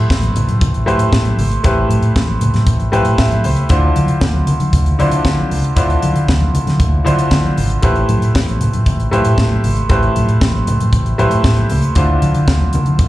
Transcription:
Already playing: grand piano A3 E4 G4 B4 C5
0.10 fingered electric bass A1, kick, snare
0.23 closed hi-hat, high conga
0.35 fingered electric bass A2, closed hi-hat, muted conga, low conga
0.48 fingered electric bass A2, closed hi-hat, high conga
0.61 fingered electric bass A1, kick, closed hi-hat, muted conga, low conga
0.74 closed hi-hat
0.86 fingered electric bass A2, grand piano A3 E4 G4 B4 C5, closed hi-hat, muted conga, high conga
0.99 fingered electric bass A2, closed hi-hat
1.13 fingered electric bass A2, kick, snare, muted conga
1.25 closed hi-hat, high conga
1.38 fingered electric bass G#1, open hi-hat, low conga
1.51 closed hi-hat
1.64 fingered electric bass A1, grand piano A3 E4 G4 B4 C5, kick, closed hi-hat, muted conga
1.89 fingered electric bass A2, closed hi-hat, muted conga, high conga
2.02 fingered electric bass A2, closed hi-hat
2.16 fingered electric bass A1, kick, snare
2.28 high conga
2.41 fingered electric bass A2, closed hi-hat, muted conga, low conga
2.54 fingered electric bass A2, snare, closed hi-hat, high conga
2.67 fingered electric bass A1, kick, closed hi-hat, low conga
2.80 closed hi-hat
2.92 fingered electric bass A2, grand piano A3 E4 G4 B4 C5 G5, closed hi-hat, muted conga, high conga
3.05 fingered electric bass A2, closed hi-hat
3.18 fingered electric bass A2, grand piano E5, kick, snare, muted conga
3.31 closed hi-hat, high conga
3.44 fingered electric bass C#2, grand piano C5, open hi-hat, muted conga, low conga
3.57 closed hi-hat
3.69 fingered electric bass D2, grand piano D3 D4 E4 F4 C5, kick, closed hi-hat
3.96 fingered electric bass D3, closed hi-hat, muted conga, high conga
4.08 fingered electric bass D3, closed hi-hat
4.21 fingered electric bass D2, kick, snare
4.34 high conga
4.47 fingered electric bass D3, closed hi-hat, muted conga, low conga
4.60 fingered electric bass D3, closed hi-hat, high conga
4.73 fingered electric bass D2, kick, closed hi-hat, muted conga, low conga
4.86 closed hi-hat
4.99 grand piano D3 D4 E4 F4 C5, fingered electric bass D3, closed hi-hat, muted conga, high conga
5.11 fingered electric bass D3, closed hi-hat
5.25 fingered electric bass D3, kick, snare, muted conga
5.39 high conga
5.51 fingered electric bass C#2, open hi-hat, muted conga, low conga
5.64 closed hi-hat
5.76 fingered electric bass D2, grand piano D3 D4 E4 F4 C5, kick, closed hi-hat, muted conga
5.90 closed hi-hat
6.02 fingered electric bass D3, closed hi-hat, muted conga, high conga
6.15 fingered electric bass D3, closed hi-hat
6.28 fingered electric bass D2, kick, snare
6.41 high conga
6.54 fingered electric bass D3, closed hi-hat, muted conga, low conga
6.67 fingered electric bass D3, snare, closed hi-hat, high conga
6.80 fingered electric bass D2, kick, closed hi-hat, muted conga, low conga
7.04 grand piano D3 D4 E4 F4 C5, fingered electric bass D3, closed hi-hat, muted conga, high conga
7.18 fingered electric bass D3, closed hi-hat
7.31 fingered electric bass D3, kick, snare, muted conga
7.45 high conga
7.57 fingered electric bass G#1, open hi-hat, muted conga, low conga
7.70 closed hi-hat
7.82 fingered electric bass A1, grand piano A3 E4 G4 B4 C5, kick, closed hi-hat
7.96 closed hi-hat
8.09 fingered electric bass A2, closed hi-hat, muted conga, high conga
8.22 fingered electric bass A2, closed hi-hat
8.35 fingered electric bass A1, kick, snare
8.47 closed hi-hat, high conga
8.60 fingered electric bass A2, closed hi-hat, muted conga, low conga
8.73 fingered electric bass A2, closed hi-hat, high conga
8.86 fingered electric bass A1, kick, closed hi-hat, low conga
9.00 closed hi-hat
9.11 fingered electric bass A2, grand piano A3 E4 G4 B4 C5, closed hi-hat, high conga
9.25 fingered electric bass A2, closed hi-hat
9.38 fingered electric bass A2, kick, snare, muted conga
9.53 high conga
9.64 fingered electric bass G#1, open hi-hat, muted conga, low conga
9.77 closed hi-hat
9.89 fingered electric bass A1, grand piano A3 E4 G4 B4 C5, kick, closed hi-hat, muted conga
10.03 closed hi-hat
10.16 fingered electric bass A2, closed hi-hat, high conga
10.29 fingered electric bass A2, closed hi-hat
10.41 fingered electric bass A1, kick, snare
10.54 high conga
10.67 fingered electric bass A2, closed hi-hat, muted conga, low conga
10.81 fingered electric bass A2, closed hi-hat, high conga
10.93 fingered electric bass A1, kick, closed hi-hat, muted conga, low conga
11.06 closed hi-hat
11.18 fingered electric bass A2, grand piano A3 E4 G4 B4 C5, closed hi-hat, muted conga, high conga
11.31 fingered electric bass A2, closed hi-hat
11.44 fingered electric bass A2, kick, snare
11.57 closed hi-hat, high conga
11.70 fingered electric bass C#2, open hi-hat, muted conga, low conga
11.82 closed hi-hat
11.95 fingered electric bass D2, grand piano D3 D4 E4 F4 C5, kick, closed hi-hat
12.22 fingered electric bass D3, closed hi-hat, muted conga, high conga
12.35 fingered electric bass D3, closed hi-hat
12.48 fingered electric bass D2, kick, snare
12.61 high conga
12.73 fingered electric bass D3, closed hi-hat, low conga
12.86 fingered electric bass D3, closed hi-hat, high conga
12.99 fingered electric bass D2, kick, closed hi-hat, muted conga, low conga

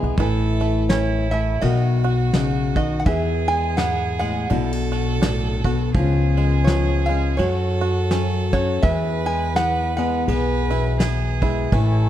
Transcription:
Already playing: steel-string acoustic guitar E2 G#3 B3 G#4, five-string banjo E3 G#3 E4
0.03 upright bass B1, five-string banjo B3
0.17 upright bass A1, steel-string acoustic guitar A2 E4, five-string banjo E3, fiddle A4, kick, ride
0.60 five-string banjo A3, ride
0.89 five-string banjo C#4, fiddle E4, resonator guitar played with a steel bar C#5, snare, ride
1.31 steel-string acoustic guitar A2, five-string banjo A3, resonator guitar played with a steel bar E5, ride
1.61 upright bass B1, steel-string acoustic guitar B2 F#4, five-string banjo D#3, fiddle F#4, resonator guitar played with a steel bar D#5, ride
2.03 five-string banjo F#4, ride
2.33 steel-string acoustic guitar C#3, five-string banjo D#4, snare, ride
2.76 steel-string acoustic guitar D#3, five-string banjo F#4, resonator guitar played with a steel bar D#5, kick, ride
3.00 resonator guitar played with a steel bar F#5
3.05 upright bass E2, steel-string acoustic guitar E2 G#4, five-string banjo E3, fiddle G#4, resonator guitar played with a steel bar E5, kick, ride
3.48 five-string banjo G#3, resonator guitar played with a steel bar G#5, ride
3.77 steel-string acoustic guitar G#2, five-string banjo B3, resonator guitar played with a steel bar F#5, snare, ride
4.19 steel-string acoustic guitar A2, five-string banjo G#3, resonator guitar played with a steel bar F#5, ride
4.50 upright bass B1, steel-string acoustic guitar B2 E4, five-string banjo D3, fiddle A4, ride
4.73 steel-string acoustic guitar F#4
4.92 five-string banjo F#4, ride
5.22 steel-string acoustic guitar A2, five-string banjo D4, snare, ride
5.64 steel-string acoustic guitar B2, five-string banjo F#4, kick, ride
5.94 upright bass C#2, steel-string acoustic guitar C#3 F3, five-string banjo F3, fiddle G#4, kick, ride
5.98 steel-string acoustic guitar B3 C#4 F4
6.37 five-string banjo G#3, ride
6.64 steel-string acoustic guitar F3, five-string banjo B3, resonator guitar played with a steel bar C#5, snare, ride
7.06 five-string banjo G#3, resonator guitar played with a steel bar F5, ride
7.10 steel-string acoustic guitar C#4
7.37 steel-string acoustic guitar F#2 F#4, upright bass F#2, five-string banjo F#3, fiddle A4, resonator guitar played with a steel bar C#5, ride
7.81 five-string banjo F#4, ride
8.11 steel-string acoustic guitar F#3, five-string banjo C#4, snare, ride
8.53 steel-string acoustic guitar C#4, five-string banjo F#4, resonator guitar played with a steel bar C#5, kick, ride
8.82 steel-string acoustic guitar E2 G#4, upright bass E2, five-string banjo E3, fiddle B4, resonator guitar played with a steel bar E5, kick, ride
9.25 five-string banjo G#3, resonator guitar played with a steel bar G#5, ride
9.55 steel-string acoustic guitar E3, five-string banjo B3, resonator guitar played with a steel bar F#5, snare, ride
9.97 five-string banjo G#3, steel-string acoustic guitar B3, resonator guitar played with a steel bar F#5, ride
10.27 upright bass B1, five-string banjo B3, steel-string acoustic guitar G#4, fiddle B4, ride
10.70 steel-string acoustic guitar B2, five-string banjo E4, ride
10.99 five-string banjo B3, steel-string acoustic guitar B3, fiddle G#4, snare, ride
11.42 steel-string acoustic guitar G#3, five-string banjo E4, kick, ride
11.72 upright bass A1, steel-string acoustic guitar A2 E4, accordion E3 A3 C#4, five-string banjo E3, fiddle A4, kick, ride

